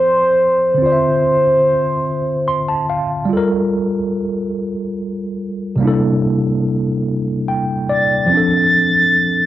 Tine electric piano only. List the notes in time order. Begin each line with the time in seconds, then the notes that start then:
Already playing: F3 C4 A4 D5
0.74 D3 C4
0.82 F4
0.86 D5
0.92 E5
2.48 C6
2.69 A5
2.90 F5
3.25 G3
3.29 F4 A4
3.37 A#4
5.76 C3 G3
5.80 A#3 D4
5.85 E4 A4
7.48 G5
7.89 D5
8.26 F3 C4
8.34 D4 A4